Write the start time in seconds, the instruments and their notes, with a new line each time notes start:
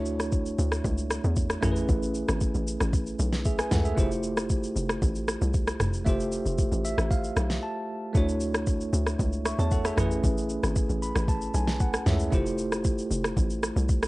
Already playing: log drum bass D2, tine electric piano A3 D4 E4 F#4 C#5
0.06 shaker
0.20 cross-stick, shaker
0.32 kick, shaker
0.46 shaker
0.59 log drum bass D2, shaker
0.72 cross-stick, shaker
0.84 log drum bass C#2, kick, shaker
0.98 shaker
1.11 cross-stick, shaker
1.24 log drum bass E2, shaker
1.36 kick, shaker
1.50 cross-stick, shaker
1.61 log drum bass A1, tine electric piano A3 C#4 E4 G#4, cross-stick, mid tom, shaker
1.65 tine electric piano A#4
1.71 tine electric piano B4
1.76 shaker
1.89 log drum bass A1, kick, shaker
2.03 shaker
2.14 shaker
2.28 log drum bass G#1, cross-stick, shaker
2.41 kick, shaker
2.55 log drum bass A1, shaker
2.67 shaker
2.80 log drum bass A1, cross-stick, shaker
2.93 kick, shaker
3.06 shaker
3.19 log drum bass B1, shaker
3.33 snare, shaker
3.45 tine electric piano G#4 E5, kick, shaker
3.59 tine electric piano B4 G#5, cross-stick, shaker
3.71 log drum bass C#2, tine electric piano A4 F#5, snare, mid tom, shaker
3.85 tine electric piano G#4 E5, shaker
3.95 log drum bass F1, tine electric piano A3 E4 F4 G4, kick, shaker
4.00 tine electric piano C5
4.11 shaker
4.23 shaker
4.37 cross-stick, shaker
4.49 kick, shaker
4.63 shaker
4.76 log drum bass F1, shaker
4.89 cross-stick, shaker
5.02 log drum bass A1, kick, shaker
5.15 shaker
5.28 cross-stick, shaker
5.42 log drum bass C2, shaker
5.54 kick, shaker
5.68 cross-stick, shaker
5.80 log drum bass F1, cross-stick, mid tom, shaker
5.93 shaker
6.04 log drum bass F1, tine electric piano A3 F4 G4 E5, kick, shaker
6.09 tine electric piano C5
6.20 shaker
6.32 shaker
6.46 log drum bass F1, shaker
6.58 kick, shaker
6.72 log drum bass A1, shaker
6.85 tine electric piano E5, shaker
6.98 log drum bass A1, cross-stick, shaker
7.11 tine electric piano F5, kick, shaker
7.24 shaker
7.36 log drum bass B1, cross-stick, shaker
7.50 snare, shaker
7.63 tine electric piano A5
8.13 log drum bass D2, tine electric piano A3 D4 E4 F#4, kick, shaker
8.17 tine electric piano C#5
8.29 shaker
8.40 shaker
8.54 cross-stick, shaker
8.67 kick, shaker
8.81 shaker
8.93 log drum bass D2, shaker
9.06 cross-stick, shaker
9.19 log drum bass C#2, kick, shaker
9.33 shaker
9.45 tine electric piano E5 C#6, cross-stick, shaker
9.59 log drum bass E2, tine electric piano C#5 A5, shaker
9.71 tine electric piano A4 F#5, kick, shaker
9.85 tine electric piano G#4 E5, cross-stick, shaker
9.96 log drum bass A1, tine electric piano A3 C#4 E4 G#4, cross-stick, mid tom, shaker
10.00 tine electric piano B4
10.11 shaker
10.24 log drum bass A1, kick, shaker
10.38 shaker
10.49 shaker
10.63 log drum bass G#1, cross-stick, shaker
10.76 kick, shaker
10.89 log drum bass A1, shaker
11.02 tine electric piano B5, shaker
11.16 log drum bass A1, cross-stick, shaker
11.28 tine electric piano A5, kick, shaker
11.41 shaker
11.54 log drum bass B1, tine electric piano G#5, shaker
11.68 snare, shaker
11.80 tine electric piano F#5, kick, shaker
11.94 cross-stick, shaker
12.06 log drum bass C#2, tine electric piano A3 C#4 E4 G#4 C#5 E5, snare, mid tom, shaker
12.20 shaker
12.30 log drum bass F1, tine electric piano A3 E4 F4 G4, kick, shaker
12.35 tine electric piano C5
12.46 shaker
12.58 shaker
12.72 cross-stick, shaker
12.84 kick, shaker
12.98 shaker
13.11 log drum bass F1, shaker
13.24 cross-stick, shaker
13.37 log drum bass A1, kick, shaker
13.50 shaker
13.63 cross-stick, shaker
13.76 log drum bass C2, shaker
13.89 kick, shaker
14.03 cross-stick, shaker